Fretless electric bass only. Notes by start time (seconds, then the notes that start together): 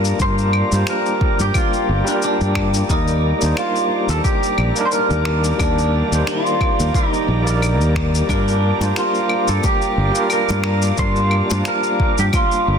Already playing: G2
0.20 G2
0.72 G2
1.39 G2
1.89 G1
2.41 G2
2.90 D#2
3.42 D#2
4.09 D#2
4.58 A#1
5.10 D#2
5.60 D#2
6.12 D#2
6.80 D#2
7.28 A#1
7.80 D#2
8.29 G2
8.81 G2
9.49 G2
9.98 G1
10.50 G2
10.98 G2
11.51 G2
12.19 G2
12.68 G1